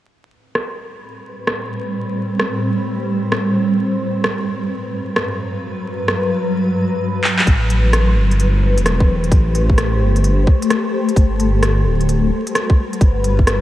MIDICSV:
0, 0, Header, 1, 4, 480
1, 0, Start_track
1, 0, Tempo, 461538
1, 90, Time_signature, 4, 2, 24, 8
1, 14155, End_track
2, 0, Start_track
2, 0, Title_t, "Ambient pad"
2, 0, Program_c, 0, 92
2, 85, Note_on_c, 0, 55, 76
2, 85, Note_on_c, 0, 60, 74
2, 86, Note_on_c, 0, 45, 80
2, 86, Note_on_c, 0, 71, 89
2, 1989, Note_off_c, 0, 71, 0
2, 2016, Note_on_c, 0, 72, 91
2, 3889, Note_off_c, 0, 55, 0
2, 3890, Note_off_c, 0, 45, 0
2, 3890, Note_off_c, 0, 60, 0
2, 3914, Note_off_c, 0, 72, 0
2, 3929, Note_on_c, 0, 54, 77
2, 3931, Note_on_c, 0, 71, 92
2, 3932, Note_on_c, 0, 43, 85
2, 7731, Note_off_c, 0, 54, 0
2, 7732, Note_off_c, 0, 71, 0
2, 7733, Note_off_c, 0, 43, 0
2, 7773, Note_on_c, 0, 72, 93
2, 7775, Note_on_c, 0, 57, 82
2, 7776, Note_on_c, 0, 71, 78
2, 7777, Note_on_c, 0, 67, 78
2, 9674, Note_off_c, 0, 71, 0
2, 9687, Note_on_c, 0, 69, 80
2, 11574, Note_off_c, 0, 57, 0
2, 11574, Note_off_c, 0, 72, 0
2, 11575, Note_off_c, 0, 67, 0
2, 11590, Note_off_c, 0, 69, 0
2, 11608, Note_on_c, 0, 55, 88
2, 11610, Note_on_c, 0, 66, 78
2, 11610, Note_on_c, 0, 71, 97
2, 13511, Note_off_c, 0, 66, 0
2, 13531, Note_on_c, 0, 67, 80
2, 14155, Note_off_c, 0, 55, 0
2, 14155, Note_off_c, 0, 67, 0
2, 14155, Note_off_c, 0, 71, 0
2, 14155, End_track
3, 0, Start_track
3, 0, Title_t, "Detuned saw bass"
3, 0, Program_c, 1, 39
3, 7769, Note_on_c, 1, 33, 97
3, 8488, Note_on_c, 1, 31, 99
3, 8503, Note_off_c, 1, 33, 0
3, 9125, Note_on_c, 1, 28, 77
3, 9141, Note_off_c, 1, 31, 0
3, 9680, Note_off_c, 1, 28, 0
3, 9690, Note_on_c, 1, 33, 94
3, 10410, Note_on_c, 1, 31, 99
3, 10425, Note_off_c, 1, 33, 0
3, 10879, Note_off_c, 1, 31, 0
3, 11611, Note_on_c, 1, 31, 99
3, 12329, Note_on_c, 1, 26, 99
3, 12345, Note_off_c, 1, 31, 0
3, 12799, Note_off_c, 1, 26, 0
3, 13531, Note_on_c, 1, 31, 96
3, 14155, Note_off_c, 1, 31, 0
3, 14155, End_track
4, 0, Start_track
4, 0, Title_t, "Drums"
4, 574, Note_on_c, 9, 37, 93
4, 678, Note_off_c, 9, 37, 0
4, 1531, Note_on_c, 9, 37, 97
4, 1635, Note_off_c, 9, 37, 0
4, 2491, Note_on_c, 9, 37, 98
4, 2595, Note_off_c, 9, 37, 0
4, 3451, Note_on_c, 9, 37, 100
4, 3555, Note_off_c, 9, 37, 0
4, 4410, Note_on_c, 9, 37, 99
4, 4514, Note_off_c, 9, 37, 0
4, 5368, Note_on_c, 9, 37, 105
4, 5472, Note_off_c, 9, 37, 0
4, 6326, Note_on_c, 9, 37, 102
4, 6430, Note_off_c, 9, 37, 0
4, 7528, Note_on_c, 9, 39, 77
4, 7632, Note_off_c, 9, 39, 0
4, 7683, Note_on_c, 9, 39, 93
4, 7769, Note_on_c, 9, 36, 109
4, 7770, Note_on_c, 9, 42, 52
4, 7787, Note_off_c, 9, 39, 0
4, 7873, Note_off_c, 9, 36, 0
4, 7874, Note_off_c, 9, 42, 0
4, 8009, Note_on_c, 9, 42, 57
4, 8113, Note_off_c, 9, 42, 0
4, 8250, Note_on_c, 9, 37, 99
4, 8250, Note_on_c, 9, 42, 55
4, 8354, Note_off_c, 9, 37, 0
4, 8354, Note_off_c, 9, 42, 0
4, 8646, Note_on_c, 9, 42, 29
4, 8732, Note_off_c, 9, 42, 0
4, 8732, Note_on_c, 9, 42, 53
4, 8836, Note_off_c, 9, 42, 0
4, 9126, Note_on_c, 9, 42, 56
4, 9211, Note_off_c, 9, 42, 0
4, 9211, Note_on_c, 9, 37, 102
4, 9211, Note_on_c, 9, 42, 56
4, 9315, Note_off_c, 9, 37, 0
4, 9315, Note_off_c, 9, 42, 0
4, 9364, Note_on_c, 9, 36, 100
4, 9468, Note_off_c, 9, 36, 0
4, 9608, Note_on_c, 9, 42, 31
4, 9688, Note_on_c, 9, 36, 115
4, 9690, Note_off_c, 9, 42, 0
4, 9690, Note_on_c, 9, 42, 54
4, 9792, Note_off_c, 9, 36, 0
4, 9794, Note_off_c, 9, 42, 0
4, 9931, Note_on_c, 9, 42, 58
4, 10035, Note_off_c, 9, 42, 0
4, 10084, Note_on_c, 9, 36, 60
4, 10170, Note_on_c, 9, 37, 105
4, 10170, Note_on_c, 9, 42, 52
4, 10188, Note_off_c, 9, 36, 0
4, 10274, Note_off_c, 9, 37, 0
4, 10274, Note_off_c, 9, 42, 0
4, 10566, Note_on_c, 9, 42, 31
4, 10651, Note_off_c, 9, 42, 0
4, 10651, Note_on_c, 9, 42, 58
4, 10755, Note_off_c, 9, 42, 0
4, 10890, Note_on_c, 9, 36, 101
4, 10994, Note_off_c, 9, 36, 0
4, 11048, Note_on_c, 9, 42, 55
4, 11132, Note_off_c, 9, 42, 0
4, 11132, Note_on_c, 9, 37, 108
4, 11132, Note_on_c, 9, 42, 56
4, 11236, Note_off_c, 9, 37, 0
4, 11236, Note_off_c, 9, 42, 0
4, 11530, Note_on_c, 9, 42, 32
4, 11610, Note_on_c, 9, 36, 109
4, 11615, Note_off_c, 9, 42, 0
4, 11615, Note_on_c, 9, 42, 51
4, 11714, Note_off_c, 9, 36, 0
4, 11719, Note_off_c, 9, 42, 0
4, 11853, Note_on_c, 9, 42, 56
4, 11957, Note_off_c, 9, 42, 0
4, 12092, Note_on_c, 9, 37, 103
4, 12092, Note_on_c, 9, 42, 55
4, 12196, Note_off_c, 9, 37, 0
4, 12196, Note_off_c, 9, 42, 0
4, 12487, Note_on_c, 9, 42, 30
4, 12573, Note_off_c, 9, 42, 0
4, 12573, Note_on_c, 9, 42, 51
4, 12677, Note_off_c, 9, 42, 0
4, 12967, Note_on_c, 9, 42, 57
4, 13054, Note_off_c, 9, 42, 0
4, 13054, Note_on_c, 9, 37, 105
4, 13054, Note_on_c, 9, 42, 55
4, 13158, Note_off_c, 9, 37, 0
4, 13158, Note_off_c, 9, 42, 0
4, 13205, Note_on_c, 9, 36, 106
4, 13309, Note_off_c, 9, 36, 0
4, 13448, Note_on_c, 9, 42, 31
4, 13530, Note_on_c, 9, 36, 112
4, 13532, Note_off_c, 9, 42, 0
4, 13532, Note_on_c, 9, 42, 48
4, 13634, Note_off_c, 9, 36, 0
4, 13636, Note_off_c, 9, 42, 0
4, 13772, Note_on_c, 9, 42, 53
4, 13876, Note_off_c, 9, 42, 0
4, 13926, Note_on_c, 9, 36, 61
4, 14010, Note_on_c, 9, 37, 100
4, 14010, Note_on_c, 9, 42, 51
4, 14030, Note_off_c, 9, 36, 0
4, 14114, Note_off_c, 9, 37, 0
4, 14114, Note_off_c, 9, 42, 0
4, 14155, End_track
0, 0, End_of_file